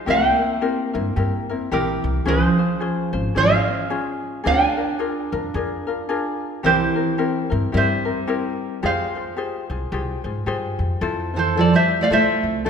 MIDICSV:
0, 0, Header, 1, 5, 480
1, 0, Start_track
1, 0, Key_signature, -4, "minor"
1, 0, Tempo, 546946
1, 62, Time_signature, 4, 2, 24, 8
1, 11144, End_track
2, 0, Start_track
2, 0, Title_t, "Ukulele"
2, 0, Program_c, 0, 24
2, 86, Note_on_c, 0, 76, 72
2, 92, Note_on_c, 0, 79, 86
2, 1481, Note_off_c, 0, 76, 0
2, 1519, Note_on_c, 0, 70, 77
2, 1523, Note_on_c, 0, 67, 66
2, 1559, Note_off_c, 0, 79, 0
2, 1958, Note_off_c, 0, 70, 0
2, 1960, Note_off_c, 0, 67, 0
2, 2004, Note_on_c, 0, 72, 101
2, 2012, Note_on_c, 0, 68, 67
2, 2923, Note_off_c, 0, 68, 0
2, 2961, Note_on_c, 0, 77, 95
2, 2965, Note_off_c, 0, 72, 0
2, 2968, Note_on_c, 0, 73, 67
2, 3882, Note_off_c, 0, 73, 0
2, 3920, Note_off_c, 0, 77, 0
2, 3923, Note_on_c, 0, 80, 104
2, 3931, Note_on_c, 0, 77, 86
2, 5805, Note_off_c, 0, 77, 0
2, 5843, Note_on_c, 0, 72, 94
2, 5849, Note_on_c, 0, 67, 73
2, 5894, Note_off_c, 0, 80, 0
2, 6764, Note_off_c, 0, 67, 0
2, 6812, Note_off_c, 0, 72, 0
2, 6819, Note_on_c, 0, 76, 80
2, 6822, Note_on_c, 0, 72, 76
2, 7731, Note_off_c, 0, 72, 0
2, 7773, Note_on_c, 0, 77, 84
2, 7777, Note_off_c, 0, 76, 0
2, 7780, Note_on_c, 0, 72, 69
2, 9165, Note_off_c, 0, 77, 0
2, 9169, Note_off_c, 0, 72, 0
2, 9979, Note_on_c, 0, 69, 62
2, 9994, Note_on_c, 0, 72, 79
2, 10148, Note_off_c, 0, 69, 0
2, 10172, Note_on_c, 0, 69, 65
2, 10173, Note_off_c, 0, 72, 0
2, 10185, Note_on_c, 0, 74, 82
2, 10293, Note_off_c, 0, 69, 0
2, 10300, Note_off_c, 0, 74, 0
2, 10313, Note_on_c, 0, 72, 66
2, 10318, Note_on_c, 0, 76, 85
2, 10525, Note_off_c, 0, 72, 0
2, 10550, Note_off_c, 0, 76, 0
2, 10553, Note_on_c, 0, 74, 65
2, 10564, Note_on_c, 0, 77, 89
2, 10633, Note_off_c, 0, 74, 0
2, 10644, Note_on_c, 0, 72, 74
2, 10646, Note_off_c, 0, 77, 0
2, 10649, Note_on_c, 0, 76, 94
2, 11081, Note_off_c, 0, 72, 0
2, 11128, Note_off_c, 0, 76, 0
2, 11144, End_track
3, 0, Start_track
3, 0, Title_t, "Ukulele"
3, 0, Program_c, 1, 24
3, 54, Note_on_c, 1, 67, 76
3, 60, Note_on_c, 1, 60, 72
3, 63, Note_on_c, 1, 64, 73
3, 67, Note_on_c, 1, 70, 87
3, 326, Note_off_c, 1, 70, 0
3, 337, Note_on_c, 1, 70, 50
3, 340, Note_off_c, 1, 64, 0
3, 343, Note_off_c, 1, 67, 0
3, 346, Note_off_c, 1, 60, 0
3, 350, Note_on_c, 1, 64, 55
3, 357, Note_on_c, 1, 60, 43
3, 530, Note_off_c, 1, 60, 0
3, 532, Note_off_c, 1, 64, 0
3, 534, Note_off_c, 1, 70, 0
3, 536, Note_on_c, 1, 67, 65
3, 541, Note_on_c, 1, 60, 69
3, 543, Note_on_c, 1, 64, 79
3, 544, Note_on_c, 1, 70, 78
3, 810, Note_off_c, 1, 70, 0
3, 819, Note_off_c, 1, 64, 0
3, 821, Note_on_c, 1, 70, 58
3, 824, Note_off_c, 1, 67, 0
3, 827, Note_off_c, 1, 60, 0
3, 829, Note_on_c, 1, 64, 60
3, 837, Note_on_c, 1, 60, 50
3, 1016, Note_off_c, 1, 60, 0
3, 1019, Note_off_c, 1, 70, 0
3, 1019, Note_on_c, 1, 67, 68
3, 1023, Note_off_c, 1, 64, 0
3, 1026, Note_on_c, 1, 60, 58
3, 1036, Note_on_c, 1, 64, 66
3, 1039, Note_on_c, 1, 70, 72
3, 1301, Note_off_c, 1, 70, 0
3, 1306, Note_off_c, 1, 67, 0
3, 1309, Note_off_c, 1, 60, 0
3, 1311, Note_off_c, 1, 64, 0
3, 1312, Note_on_c, 1, 70, 64
3, 1321, Note_on_c, 1, 64, 59
3, 1331, Note_on_c, 1, 60, 45
3, 1500, Note_off_c, 1, 60, 0
3, 1504, Note_off_c, 1, 64, 0
3, 1505, Note_off_c, 1, 70, 0
3, 1505, Note_on_c, 1, 67, 81
3, 1511, Note_on_c, 1, 60, 82
3, 1514, Note_on_c, 1, 64, 82
3, 1515, Note_on_c, 1, 70, 84
3, 1975, Note_off_c, 1, 67, 0
3, 1978, Note_on_c, 1, 68, 71
3, 1982, Note_off_c, 1, 60, 0
3, 1983, Note_off_c, 1, 64, 0
3, 1985, Note_on_c, 1, 61, 86
3, 1986, Note_on_c, 1, 65, 73
3, 1989, Note_off_c, 1, 70, 0
3, 1993, Note_on_c, 1, 72, 78
3, 2258, Note_off_c, 1, 72, 0
3, 2266, Note_off_c, 1, 68, 0
3, 2268, Note_off_c, 1, 65, 0
3, 2269, Note_off_c, 1, 61, 0
3, 2269, Note_on_c, 1, 72, 50
3, 2278, Note_on_c, 1, 65, 47
3, 2287, Note_on_c, 1, 61, 43
3, 2456, Note_off_c, 1, 61, 0
3, 2458, Note_off_c, 1, 65, 0
3, 2460, Note_on_c, 1, 68, 67
3, 2461, Note_off_c, 1, 72, 0
3, 2466, Note_on_c, 1, 61, 67
3, 2469, Note_on_c, 1, 65, 69
3, 2471, Note_on_c, 1, 72, 78
3, 2735, Note_off_c, 1, 72, 0
3, 2745, Note_off_c, 1, 65, 0
3, 2745, Note_on_c, 1, 72, 62
3, 2747, Note_off_c, 1, 68, 0
3, 2750, Note_off_c, 1, 61, 0
3, 2755, Note_on_c, 1, 65, 52
3, 2761, Note_on_c, 1, 61, 49
3, 2931, Note_off_c, 1, 61, 0
3, 2938, Note_off_c, 1, 65, 0
3, 2938, Note_on_c, 1, 68, 57
3, 2942, Note_off_c, 1, 72, 0
3, 2942, Note_on_c, 1, 61, 54
3, 2948, Note_on_c, 1, 65, 66
3, 2956, Note_on_c, 1, 72, 64
3, 3213, Note_off_c, 1, 72, 0
3, 3224, Note_off_c, 1, 65, 0
3, 3224, Note_on_c, 1, 72, 53
3, 3226, Note_off_c, 1, 68, 0
3, 3228, Note_off_c, 1, 61, 0
3, 3234, Note_on_c, 1, 65, 47
3, 3241, Note_on_c, 1, 61, 45
3, 3414, Note_off_c, 1, 61, 0
3, 3422, Note_off_c, 1, 72, 0
3, 3423, Note_off_c, 1, 65, 0
3, 3424, Note_on_c, 1, 68, 85
3, 3425, Note_on_c, 1, 61, 79
3, 3433, Note_on_c, 1, 65, 82
3, 3889, Note_off_c, 1, 68, 0
3, 3893, Note_on_c, 1, 68, 83
3, 3897, Note_off_c, 1, 61, 0
3, 3900, Note_on_c, 1, 62, 78
3, 3902, Note_off_c, 1, 65, 0
3, 3905, Note_on_c, 1, 65, 79
3, 3907, Note_on_c, 1, 70, 83
3, 4173, Note_off_c, 1, 70, 0
3, 4182, Note_off_c, 1, 65, 0
3, 4183, Note_on_c, 1, 70, 55
3, 4184, Note_off_c, 1, 68, 0
3, 4188, Note_off_c, 1, 62, 0
3, 4192, Note_on_c, 1, 65, 50
3, 4205, Note_on_c, 1, 62, 40
3, 4372, Note_off_c, 1, 62, 0
3, 4375, Note_off_c, 1, 65, 0
3, 4377, Note_on_c, 1, 68, 68
3, 4382, Note_off_c, 1, 70, 0
3, 4383, Note_on_c, 1, 62, 67
3, 4385, Note_on_c, 1, 65, 84
3, 4391, Note_on_c, 1, 70, 73
3, 4660, Note_off_c, 1, 70, 0
3, 4667, Note_off_c, 1, 65, 0
3, 4667, Note_off_c, 1, 68, 0
3, 4669, Note_off_c, 1, 62, 0
3, 4670, Note_on_c, 1, 70, 63
3, 4678, Note_on_c, 1, 65, 52
3, 4690, Note_on_c, 1, 62, 47
3, 4864, Note_off_c, 1, 62, 0
3, 4866, Note_off_c, 1, 70, 0
3, 4870, Note_off_c, 1, 65, 0
3, 4870, Note_on_c, 1, 68, 60
3, 4875, Note_on_c, 1, 62, 59
3, 4884, Note_on_c, 1, 65, 72
3, 4887, Note_on_c, 1, 70, 72
3, 5139, Note_off_c, 1, 70, 0
3, 5150, Note_on_c, 1, 70, 61
3, 5151, Note_off_c, 1, 65, 0
3, 5153, Note_off_c, 1, 68, 0
3, 5156, Note_off_c, 1, 62, 0
3, 5161, Note_on_c, 1, 65, 59
3, 5167, Note_on_c, 1, 62, 51
3, 5335, Note_off_c, 1, 62, 0
3, 5337, Note_off_c, 1, 65, 0
3, 5342, Note_off_c, 1, 70, 0
3, 5343, Note_on_c, 1, 68, 90
3, 5346, Note_on_c, 1, 62, 91
3, 5348, Note_on_c, 1, 65, 90
3, 5353, Note_on_c, 1, 70, 88
3, 5816, Note_off_c, 1, 68, 0
3, 5819, Note_on_c, 1, 67, 71
3, 5821, Note_off_c, 1, 62, 0
3, 5824, Note_on_c, 1, 60, 75
3, 5828, Note_off_c, 1, 65, 0
3, 5831, Note_off_c, 1, 70, 0
3, 5831, Note_on_c, 1, 64, 77
3, 5834, Note_on_c, 1, 70, 83
3, 6093, Note_off_c, 1, 70, 0
3, 6104, Note_on_c, 1, 70, 60
3, 6105, Note_off_c, 1, 64, 0
3, 6109, Note_off_c, 1, 67, 0
3, 6111, Note_off_c, 1, 60, 0
3, 6116, Note_on_c, 1, 64, 46
3, 6122, Note_on_c, 1, 60, 40
3, 6293, Note_off_c, 1, 60, 0
3, 6298, Note_off_c, 1, 64, 0
3, 6298, Note_off_c, 1, 70, 0
3, 6301, Note_on_c, 1, 67, 76
3, 6303, Note_on_c, 1, 60, 76
3, 6309, Note_on_c, 1, 64, 80
3, 6309, Note_on_c, 1, 70, 78
3, 6571, Note_off_c, 1, 70, 0
3, 6581, Note_off_c, 1, 64, 0
3, 6581, Note_on_c, 1, 70, 60
3, 6589, Note_off_c, 1, 67, 0
3, 6591, Note_off_c, 1, 60, 0
3, 6592, Note_on_c, 1, 64, 57
3, 6601, Note_on_c, 1, 60, 47
3, 6768, Note_off_c, 1, 60, 0
3, 6774, Note_off_c, 1, 64, 0
3, 6776, Note_on_c, 1, 67, 54
3, 6779, Note_on_c, 1, 60, 58
3, 6782, Note_off_c, 1, 70, 0
3, 6784, Note_on_c, 1, 64, 59
3, 6795, Note_on_c, 1, 70, 59
3, 7054, Note_off_c, 1, 70, 0
3, 7065, Note_on_c, 1, 70, 57
3, 7066, Note_off_c, 1, 64, 0
3, 7067, Note_off_c, 1, 67, 0
3, 7069, Note_off_c, 1, 60, 0
3, 7076, Note_on_c, 1, 64, 49
3, 7081, Note_on_c, 1, 60, 48
3, 7253, Note_off_c, 1, 60, 0
3, 7257, Note_off_c, 1, 64, 0
3, 7260, Note_on_c, 1, 67, 76
3, 7264, Note_off_c, 1, 70, 0
3, 7264, Note_on_c, 1, 60, 84
3, 7267, Note_on_c, 1, 64, 91
3, 7273, Note_on_c, 1, 70, 84
3, 7742, Note_off_c, 1, 67, 0
3, 7745, Note_on_c, 1, 67, 76
3, 7746, Note_off_c, 1, 60, 0
3, 7748, Note_off_c, 1, 64, 0
3, 7749, Note_on_c, 1, 65, 77
3, 7751, Note_off_c, 1, 70, 0
3, 7755, Note_on_c, 1, 68, 86
3, 7755, Note_on_c, 1, 72, 80
3, 8023, Note_off_c, 1, 72, 0
3, 8030, Note_off_c, 1, 67, 0
3, 8031, Note_off_c, 1, 68, 0
3, 8033, Note_on_c, 1, 72, 56
3, 8034, Note_off_c, 1, 65, 0
3, 8042, Note_on_c, 1, 68, 44
3, 8051, Note_on_c, 1, 65, 45
3, 8215, Note_off_c, 1, 65, 0
3, 8215, Note_off_c, 1, 72, 0
3, 8217, Note_off_c, 1, 68, 0
3, 8218, Note_on_c, 1, 67, 74
3, 8226, Note_on_c, 1, 65, 62
3, 8228, Note_on_c, 1, 68, 71
3, 8233, Note_on_c, 1, 72, 80
3, 8498, Note_off_c, 1, 72, 0
3, 8505, Note_off_c, 1, 67, 0
3, 8508, Note_off_c, 1, 68, 0
3, 8508, Note_on_c, 1, 72, 58
3, 8512, Note_off_c, 1, 65, 0
3, 8518, Note_on_c, 1, 68, 56
3, 8527, Note_on_c, 1, 65, 47
3, 8704, Note_off_c, 1, 65, 0
3, 8704, Note_off_c, 1, 72, 0
3, 8707, Note_on_c, 1, 67, 65
3, 8711, Note_off_c, 1, 68, 0
3, 8715, Note_on_c, 1, 65, 60
3, 8720, Note_on_c, 1, 68, 65
3, 8724, Note_on_c, 1, 72, 70
3, 8975, Note_off_c, 1, 72, 0
3, 8983, Note_off_c, 1, 67, 0
3, 8986, Note_on_c, 1, 72, 59
3, 8987, Note_off_c, 1, 68, 0
3, 8995, Note_off_c, 1, 65, 0
3, 8998, Note_on_c, 1, 68, 51
3, 9005, Note_on_c, 1, 65, 47
3, 9177, Note_off_c, 1, 65, 0
3, 9180, Note_off_c, 1, 68, 0
3, 9180, Note_off_c, 1, 72, 0
3, 9183, Note_on_c, 1, 67, 76
3, 9188, Note_on_c, 1, 65, 88
3, 9190, Note_on_c, 1, 68, 101
3, 9195, Note_on_c, 1, 72, 100
3, 9659, Note_off_c, 1, 72, 0
3, 9663, Note_on_c, 1, 69, 81
3, 9664, Note_off_c, 1, 65, 0
3, 9665, Note_off_c, 1, 67, 0
3, 9668, Note_off_c, 1, 68, 0
3, 9668, Note_on_c, 1, 65, 94
3, 9671, Note_on_c, 1, 64, 88
3, 9679, Note_on_c, 1, 72, 103
3, 9940, Note_off_c, 1, 72, 0
3, 9950, Note_off_c, 1, 69, 0
3, 9951, Note_off_c, 1, 64, 0
3, 9951, Note_on_c, 1, 72, 55
3, 9953, Note_off_c, 1, 65, 0
3, 9961, Note_on_c, 1, 64, 50
3, 9967, Note_on_c, 1, 65, 44
3, 10139, Note_off_c, 1, 65, 0
3, 10140, Note_on_c, 1, 69, 56
3, 10143, Note_off_c, 1, 64, 0
3, 10147, Note_off_c, 1, 72, 0
3, 10150, Note_on_c, 1, 65, 57
3, 10154, Note_on_c, 1, 64, 61
3, 10159, Note_on_c, 1, 72, 62
3, 10419, Note_off_c, 1, 72, 0
3, 10427, Note_off_c, 1, 64, 0
3, 10429, Note_off_c, 1, 69, 0
3, 10430, Note_on_c, 1, 72, 51
3, 10433, Note_off_c, 1, 65, 0
3, 10437, Note_on_c, 1, 64, 48
3, 10445, Note_on_c, 1, 65, 46
3, 10620, Note_off_c, 1, 65, 0
3, 10621, Note_on_c, 1, 69, 72
3, 10622, Note_off_c, 1, 64, 0
3, 10625, Note_off_c, 1, 72, 0
3, 10631, Note_on_c, 1, 65, 72
3, 10632, Note_on_c, 1, 64, 84
3, 10639, Note_on_c, 1, 72, 85
3, 11096, Note_off_c, 1, 69, 0
3, 11099, Note_off_c, 1, 64, 0
3, 11099, Note_on_c, 1, 69, 67
3, 11103, Note_off_c, 1, 65, 0
3, 11106, Note_on_c, 1, 65, 66
3, 11107, Note_off_c, 1, 72, 0
3, 11109, Note_on_c, 1, 64, 65
3, 11144, Note_off_c, 1, 64, 0
3, 11144, Note_off_c, 1, 65, 0
3, 11144, Note_off_c, 1, 69, 0
3, 11144, End_track
4, 0, Start_track
4, 0, Title_t, "Steel-string acoustic guitar"
4, 0, Program_c, 2, 25
4, 73, Note_on_c, 2, 58, 82
4, 1473, Note_off_c, 2, 58, 0
4, 1510, Note_on_c, 2, 52, 69
4, 1954, Note_off_c, 2, 52, 0
4, 1996, Note_on_c, 2, 53, 80
4, 2915, Note_off_c, 2, 53, 0
4, 2953, Note_on_c, 2, 56, 71
4, 3875, Note_off_c, 2, 56, 0
4, 3916, Note_on_c, 2, 62, 81
4, 5797, Note_off_c, 2, 62, 0
4, 5831, Note_on_c, 2, 52, 86
4, 6755, Note_off_c, 2, 52, 0
4, 6793, Note_on_c, 2, 55, 81
4, 7716, Note_off_c, 2, 55, 0
4, 7748, Note_on_c, 2, 56, 73
4, 9153, Note_off_c, 2, 56, 0
4, 9971, Note_on_c, 2, 52, 68
4, 10143, Note_off_c, 2, 52, 0
4, 10157, Note_on_c, 2, 53, 72
4, 10285, Note_off_c, 2, 53, 0
4, 10300, Note_on_c, 2, 55, 70
4, 10518, Note_off_c, 2, 55, 0
4, 10540, Note_on_c, 2, 57, 70
4, 10626, Note_off_c, 2, 57, 0
4, 10634, Note_on_c, 2, 57, 78
4, 11076, Note_off_c, 2, 57, 0
4, 11110, Note_on_c, 2, 57, 91
4, 11144, Note_off_c, 2, 57, 0
4, 11144, End_track
5, 0, Start_track
5, 0, Title_t, "Upright bass"
5, 0, Program_c, 3, 32
5, 65, Note_on_c, 3, 36, 84
5, 250, Note_off_c, 3, 36, 0
5, 831, Note_on_c, 3, 43, 86
5, 957, Note_off_c, 3, 43, 0
5, 1022, Note_on_c, 3, 43, 89
5, 1208, Note_off_c, 3, 43, 0
5, 1505, Note_on_c, 3, 34, 77
5, 1761, Note_off_c, 3, 34, 0
5, 1789, Note_on_c, 3, 36, 85
5, 1964, Note_off_c, 3, 36, 0
5, 1978, Note_on_c, 3, 37, 85
5, 2165, Note_off_c, 3, 37, 0
5, 2745, Note_on_c, 3, 32, 81
5, 2873, Note_off_c, 3, 32, 0
5, 2948, Note_on_c, 3, 32, 86
5, 3132, Note_off_c, 3, 32, 0
5, 3911, Note_on_c, 3, 38, 85
5, 4095, Note_off_c, 3, 38, 0
5, 4673, Note_on_c, 3, 41, 93
5, 4799, Note_off_c, 3, 41, 0
5, 4864, Note_on_c, 3, 41, 89
5, 5050, Note_off_c, 3, 41, 0
5, 5826, Note_on_c, 3, 36, 77
5, 6011, Note_off_c, 3, 36, 0
5, 6596, Note_on_c, 3, 43, 88
5, 6722, Note_off_c, 3, 43, 0
5, 6793, Note_on_c, 3, 43, 86
5, 6976, Note_off_c, 3, 43, 0
5, 7753, Note_on_c, 3, 41, 80
5, 7937, Note_off_c, 3, 41, 0
5, 8511, Note_on_c, 3, 36, 79
5, 8639, Note_off_c, 3, 36, 0
5, 8705, Note_on_c, 3, 36, 92
5, 8891, Note_off_c, 3, 36, 0
5, 8990, Note_on_c, 3, 44, 81
5, 9167, Note_off_c, 3, 44, 0
5, 9180, Note_on_c, 3, 43, 74
5, 9440, Note_off_c, 3, 43, 0
5, 9468, Note_on_c, 3, 41, 78
5, 9646, Note_off_c, 3, 41, 0
5, 9665, Note_on_c, 3, 41, 92
5, 10289, Note_off_c, 3, 41, 0
5, 10625, Note_on_c, 3, 36, 87
5, 10718, Note_off_c, 3, 36, 0
5, 10911, Note_on_c, 3, 36, 77
5, 11144, Note_off_c, 3, 36, 0
5, 11144, End_track
0, 0, End_of_file